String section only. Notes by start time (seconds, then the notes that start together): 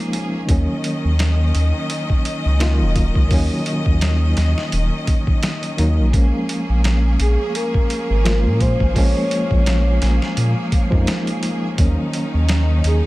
Already playing: A#3 C#4 G#4
0.48 D#3 C#4 D#5
6.13 A#3 C#4 G#4
11.78 D#3 C#4 D#4